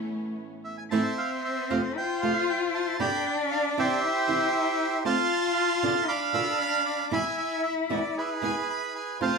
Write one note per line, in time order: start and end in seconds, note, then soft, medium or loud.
0.00 0.90 A2 medium
0.00 0.91 E3 medium
0.00 0.40 A3 medium
0.00 0.81 A3 medium
0.00 0.81 B3 medium
0.00 0.91 B3 medium
0.00 0.81 C#4 medium
0.00 0.91 C#4 medium
0.00 0.91 E4 medium
0.64 0.77 E5 medium
0.78 0.84 G#5 medium
0.90 1.00 A2 medium
0.90 1.01 E3 medium
0.90 1.01 A3 medium
0.90 1.97 C4 medium
0.90 1.01 C4 medium
0.90 1.01 E4 medium
0.90 1.92 C5 medium
0.90 1.43 E5 medium
0.90 1.18 A5 loud
1.18 1.30 F5 medium
1.44 1.71 E5 medium
1.70 1.79 F2 medium
1.70 1.79 C3 medium
1.70 1.79 F3 medium
1.70 1.79 A3 medium
1.70 1.80 C4 medium
1.70 1.79 F4 medium
1.70 1.82 F5 medium
1.96 3.02 F4 loud
1.96 2.97 C5 medium
1.96 2.21 G5 medium
2.22 2.31 F2 medium
2.22 2.31 C3 medium
2.22 2.32 F3 medium
2.22 2.32 A3 medium
2.22 2.32 C4 medium
2.22 2.32 F4 medium
2.22 2.49 F5 medium
2.50 2.61 G5 medium
2.74 3.01 A5 medium
2.99 3.09 G2 medium
2.99 3.09 B2 medium
2.99 3.09 D3 medium
2.99 3.09 G3 medium
2.99 3.09 B3 loud
2.99 4.05 D4 loud
2.99 3.09 G4 medium
2.99 3.99 D5 medium
2.99 3.25 G5 medium
2.99 3.26 B5 loud
3.26 3.38 G5 medium
3.51 3.63 F5 loud
3.77 3.86 C3 medium
3.77 3.87 E3 loud
3.77 3.87 G3 medium
3.77 3.87 C4 medium
3.77 3.87 E4 medium
3.77 5.03 G4 medium
3.77 5.03 C5 medium
3.77 5.03 E5 loud
4.04 5.05 E4 loud
4.28 4.37 C3 medium
4.28 4.37 E3 medium
4.28 4.37 G3 medium
4.28 4.38 C4 loud
4.28 4.38 E4 medium
5.05 5.14 D3 medium
5.05 5.14 A3 loud
5.05 5.15 C4 medium
5.05 5.15 F4 medium
5.05 6.11 F4 loud
5.05 6.05 F5 medium
5.05 6.05 A5 medium
5.05 6.12 C6 loud
5.83 5.92 B2 medium
5.83 5.92 D3 medium
5.83 5.92 B3 medium
5.83 5.92 D4 loud
5.83 5.92 F4 loud
6.08 7.14 D4 loud
6.08 7.08 F5 medium
6.08 7.08 B5 medium
6.08 6.20 D6 loud
6.33 6.43 B2 medium
6.33 6.43 D3 loud
6.33 6.43 B3 medium
6.33 6.43 D4 medium
6.33 6.43 F4 medium
6.33 6.59 E6 loud
6.61 6.85 F6 loud
6.86 7.13 D6 loud
7.11 7.21 E2 medium
7.11 7.21 B2 medium
7.11 7.21 E3 medium
7.11 7.21 G#3 medium
7.11 7.21 B3 medium
7.11 7.21 E4 medium
7.11 8.95 E4 loud
7.11 7.61 E5 medium
7.11 7.36 G#5 medium
7.11 7.24 B5 loud
7.38 7.62 G#5 loud
7.63 7.75 E5 loud
7.89 7.99 E2 medium
7.89 7.99 B2 medium
7.89 7.99 E3 medium
7.89 7.99 G#3 medium
7.89 7.99 B3 medium
7.89 7.99 E4 medium
7.89 8.17 D5 medium
8.17 9.18 G#4 medium
8.17 9.18 B4 medium
8.17 8.30 E5 medium
8.42 8.51 E2 medium
8.42 8.51 B2 medium
8.42 8.51 E3 medium
8.42 8.51 G#3 medium
8.42 8.52 B3 medium
8.42 8.52 E4 medium
8.42 8.55 G#5 loud
8.70 8.94 B5 medium
8.96 9.20 G#5 medium
9.20 9.30 F2 medium
9.20 9.30 C3 medium
9.20 9.30 F3 medium
9.20 9.38 A3 medium
9.20 9.30 A3 medium
9.20 9.38 C4 medium
9.20 9.30 C4 medium
9.20 9.38 F4 loud
9.20 9.30 F4 medium
9.20 9.38 F4 medium
9.20 9.38 C5 medium
9.20 9.38 F5 medium
9.20 9.38 A5 loud